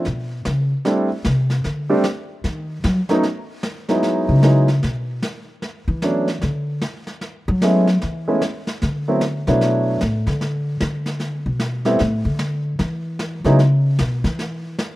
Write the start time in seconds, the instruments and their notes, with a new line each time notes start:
0.05 upright bass B2, brush sweep, snare
0.45 upright bass C#3, snare
0.85 grand piano G3 A3 C4 D4 E4, brush sweep, snare
1.25 upright bass C3, snare
1.50 snare
1.64 upright bass D3, brush sweep, snare
1.89 grand piano G3 A3 C4 D4 G4
2.04 snare
2.44 upright bass D#3, brush sweep, snare
2.84 upright bass F#3, snare
3.09 grand piano F#3 A3 B3 C#4 D#4, snare
3.23 brush sweep, snare
3.63 snare
3.89 grand piano F#3 G#3 B3 D#4 E4, snare
4.03 brush sweep, snare
4.29 upright bass C#3
4.43 grand piano F#3 G#3 B3 D#4 E4, snare
4.68 snare
4.83 upright bass B2, brush sweep, snare
5.22 snare
5.62 brush sweep, snare
5.88 upright bass E3
6.02 grand piano F#3 A3 B3 C#4 D4, snare
6.28 snare
6.41 upright bass D3, brush sweep, snare
6.82 snare
7.07 snare
7.21 brush sweep, snare
7.48 upright bass F#3
7.62 grand piano G#3 A3 B3 C#4 E4, snare
7.87 snare
8.01 upright bass E3, brush sweep, snare
8.28 grand piano G#3 A3 B3 C#4 E4
8.42 snare
8.67 snare
8.82 upright bass D3, brush sweep, snare
9.08 grand piano F#3 A3 B3 C4 E4
9.21 snare
9.47 upright bass B2, grand piano F#3 A3 B3 D4 E4, snare
9.61 brush sweep, snare
10.01 upright bass A2, snare
10.27 upright bass D3, snare
10.41 brush sweep, snare
10.80 upright bass D3, snare
11.06 snare
11.20 brush sweep, snare
11.46 upright bass B2
11.60 snare
11.85 grand piano G3 A3 B3 C4 E4, snare
11.99 upright bass A2, brush sweep, snare
12.25 upright bass D3
12.39 snare
12.79 upright bass E3, brush sweep, snare
13.19 snare
13.44 upright bass C#3, grand piano F#3 G#3 B3 D#4 E4, snare
13.59 brush sweep, snare
13.99 upright bass B2, snare
14.24 upright bass E3, snare
14.39 brush sweep, snare
14.79 snare